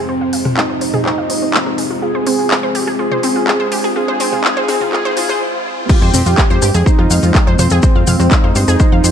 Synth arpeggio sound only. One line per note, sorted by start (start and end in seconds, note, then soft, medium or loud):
0.09 0.13 C5 medium
0.21 0.28 F5 medium
0.33 0.38 F5 medium
0.45 0.50 C4 medium
0.57 0.65 F5 medium
0.70 0.80 C5 medium
0.81 0.93 C5 medium
0.94 1.01 G#4 loud
1.06 1.10 C5 medium
1.18 1.25 F5 medium
1.30 1.37 C5 medium
1.42 1.46 C4 medium
1.54 1.61 F5 medium
1.66 1.77 C5 medium
1.78 1.86 G#4 medium
1.90 1.95 F4 medium
2.02 2.07 F4 medium
2.15 2.22 C5 medium
2.27 2.38 C4 medium
2.39 2.46 F4 medium
2.51 2.62 G#5 medium
2.63 2.74 C5 medium
2.75 2.82 G4 medium
2.87 2.95 G#4 medium
2.99 3.04 F4 medium
3.12 3.19 C5 loud
3.23 3.35 C4 loud
3.36 3.43 F4 medium
3.47 3.59 G#5 medium
3.60 3.71 C5 loud
3.72 3.79 G4 medium
3.84 3.91 G#4 loud
3.96 4.00 F4 medium
4.08 4.15 C5 loud
4.20 4.31 C4 loud
4.33 4.40 F4 medium
4.44 4.49 F4 medium
4.57 4.64 C5 loud
4.69 4.80 C4 loud
4.81 4.88 F4 medium
4.93 4.97 F4 medium
5.05 5.12 C5 loud
5.17 5.21 F4 medium
5.29 5.36 C5 loud
5.90 5.94 F4 medium
6.02 6.09 C5 loud
6.14 6.25 C4 loud
6.26 6.33 F4 medium
6.38 6.49 G#5 medium
6.50 6.61 C5 loud
6.62 6.70 G4 loud
6.74 6.82 G#4 loud
6.86 6.91 C5 medium
6.99 7.03 F4 medium
7.11 7.15 F5 medium
7.23 7.27 F4 medium
7.35 7.42 F5 medium
7.47 7.58 C5 loud
7.59 7.66 C5 loud
7.71 7.78 G#4 loud
7.83 7.88 C5 medium
7.96 8.03 F5 medium
8.07 8.12 F5 medium
8.20 8.24 C4 medium
8.32 8.39 F5 medium
8.44 8.55 C5 medium
8.56 8.67 C5 medium
8.68 8.75 G#4 loud
8.80 8.84 C5 medium
8.92 8.99 F5 medium
9.04 9.11 C5 medium